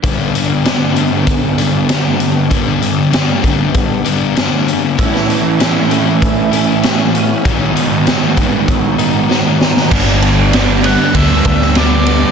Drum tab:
CC |----------------|----------------|----------------|----------------|
RD |----------------|----------------|----------------|----------------|
HH |x-x-x-x-x-x-x-x-|x-x-x-x-x-x-x-x-|x-x-x-x-x-x-x-x-|x-x-x-x-x-x-----|
SD |----o-------o---|----o-------o---|-o--o-------o---|----o-------o-oo|
BD |o-------o-------|o-----o-o-------|o-------o-------|o-----o-o-------|

CC |x---------------|
RD |--x-x-x-x-x-x-x-|
HH |----------------|
SD |----o------oo---|
BD |o-------o-o-----|